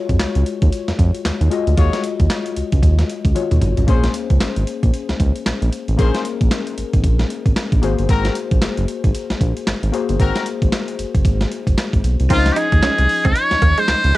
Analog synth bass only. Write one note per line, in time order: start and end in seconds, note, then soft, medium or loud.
0.09 0.18 F2 medium
0.20 0.26 C#2 soft
0.36 0.44 C#2 medium
0.62 0.70 D#2 medium
0.88 0.92 F2 soft
0.99 1.11 F2 loud
1.25 1.31 D#2 medium
1.41 1.49 D#2 medium
1.67 1.75 D2 medium
1.78 1.90 D#2 loud
2.20 2.28 D#2 medium
2.57 2.63 C#2 soft
2.72 2.81 C#2 medium
2.83 3.03 D#2 loud
3.25 3.33 C#2 medium
3.51 3.60 D#2 medium
3.62 3.74 G#1 medium
3.78 3.86 A1 medium
3.88 4.09 A#1 loud
4.30 4.39 C#2 medium
4.41 4.47 G#1 soft
4.57 4.65 G#1 medium
4.83 4.91 A#1 medium
5.09 5.14 C#2 soft
5.20 5.32 C#2 loud
5.46 5.52 A#1 soft
5.62 5.70 A#1 medium
5.88 5.96 A1 loud
5.99 6.11 A#1 loud
6.41 6.49 A#1 medium
6.78 6.84 G#1 soft
6.94 7.05 G#1 loud
7.04 7.24 A#1 loud
7.46 7.54 G#1 medium
7.72 7.80 A#1 medium
7.83 7.95 G#1 medium
7.99 8.07 G1 medium
8.09 8.30 G#1 loud
8.51 8.60 A#1 medium
8.62 8.68 F#1 soft
8.78 8.86 F#1 medium
9.04 9.12 G#1 medium
9.30 9.34 A#1 soft
9.41 9.53 A#1 medium
9.67 9.74 G#1 medium
9.83 9.91 G#1 medium
10.09 10.18 G1 medium
10.20 10.32 G#1 loud
10.62 10.70 G#1 loud
10.99 11.05 F#1 soft
11.15 11.23 F#1 medium
11.25 11.46 G#1 loud
11.67 11.75 F#1 medium
11.93 12.02 G#1 medium
12.04 12.16 B1 medium
12.20 12.28 C2 medium
12.30 12.51 C#2 loud
12.72 12.81 D#2 medium
12.83 12.89 C2 soft
12.99 13.07 C2 medium
13.25 13.33 C#2 loud
13.52 13.56 D#2 soft
13.62 13.74 D#2 medium
13.88 13.95 C#2 medium
14.04 14.12 C#2 medium